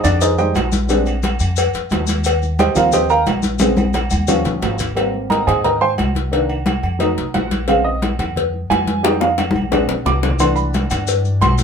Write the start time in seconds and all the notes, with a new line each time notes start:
Already playing: G3 G#3
0.04 F2 D4 D5, cowbell, high conga, low conga, low agogo, maracas
0.21 D#4 G#4 C5 D#5, cowbell, high conga, maracas
0.38 G3 G#3 D#4 G4 C5 D#5 G5, high conga, maracas
0.55 A#1, cowbell, high conga, low timbale, low agogo, maracas
0.72 cowbell, high conga, maracas
0.89 G3 G#3 C4 D4, cowbell, high conga, low agogo, maracas
1.06 high conga, low agogo, maracas
1.23 cowbell, high conga, low timbale, low agogo, maracas
1.39 F2, high conga, low agogo, maracas
1.56 cowbell, high conga, low agogo, maracas
1.74 F2, cowbell, high conga, maracas
1.90 D#2, cowbell, high conga, low timbale, low agogo, maracas
2.07 cowbell, high conga, low agogo, maracas
2.24 cowbell, low agogo, maracas
2.42 high conga, maracas
2.59 G4 C5 D#5 G5, cowbell, high conga, low timbale, low agogo, maracas
2.75 D#2 F3 G3 C4 F4 A#4 C5 F5, cowbell, high conga, low conga, low agogo, maracas
2.92 G4 C5 D#5 G5, cowbell, high conga, low conga, maracas
3.09 A#4 F5 G5 A#5, high conga, maracas
3.26 A#1, cowbell, high conga, low timbale, low agogo, maracas
3.42 cowbell, high conga, maracas
3.59 C#3 G#3 C4, cowbell, high conga, low agogo, maracas
3.76 high conga, low agogo, maracas
3.93 cowbell, low conga, low timbale, low agogo, maracas
4.10 D#2, high conga, low agogo, maracas
4.28 F3 G3 C#4, cowbell, low conga, low agogo, maracas
4.45 A#1, cowbell, low conga, maracas
4.62 G#1, cowbell, low timbale, low agogo, maracas
4.79 cowbell, low conga, low agogo, maracas
4.95 G3 A#3 C4, cowbell, high conga, low agogo
5.14 high conga
5.30 A#4 D#5 G5 A#5, cowbell, high conga, low timbale, low agogo
5.47 G#2 G#4 C5 D#5 G#5, cowbell, high conga, low conga, low agogo
5.64 A#4 D#5 G5 A#5, cowbell, high conga, low conga
5.81 C5 G5 G#5 C6, high conga
5.98 C2, cowbell, high conga, low timbale, low agogo
6.15 cowbell, high conga
6.31 D#3 A#3 D4, cowbell, high conga, low agogo
6.49 high conga, low agogo
6.66 cowbell, high conga, low timbale, low agogo
6.83 F2, high conga, low agogo
6.99 F#3 A3 D#4, cowbell, high conga, low agogo
7.17 C2, cowbell, high conga
7.34 A#1 F#5, cowbell, high conga, low timbale, low agogo
7.51 cowbell, high conga, low agogo
7.68 C#3 G#3 C4 F5, cowbell, high conga, low agogo
7.84 D#5, high conga
8.02 cowbell, high conga, low timbale, low agogo
8.19 F2, cowbell, high conga, low conga, low agogo
8.36 cowbell, high conga, low conga
8.54 high conga
8.70 F2 G#5, cowbell, high conga, low timbale, low agogo
8.87 cowbell, high conga
9.03 G3 G#3 D#4 G5, cowbell, high bongo, low agogo
9.20 F5, high bongo, high conga, low agogo
9.38 cowbell, low bongo, high conga, low timbale, low agogo
9.51 A#1, high conga
9.56 low agogo
9.62 high conga
9.71 G#3 C4 D4, cowbell, low bongo, low conga, low agogo
9.89 A#1, cowbell, low bongo
10.05 C2 D6, cowbell, low bongo, low timbale, low agogo
10.23 cowbell, low bongo, low agogo
10.30 low conga
10.39 E3 A3 D4 C6, cowbell, high conga, low agogo, maracas
10.56 B5, high conga, maracas
10.74 cowbell, high conga, low timbale, low agogo, maracas
10.90 G2, cowbell, high conga, low conga, low agogo, maracas
11.07 cowbell, high conga, maracas
11.25 high conga, maracas
11.41 B1 C6, cowbell, high conga, low timbale, low agogo, maracas
11.58 cowbell, high conga, maracas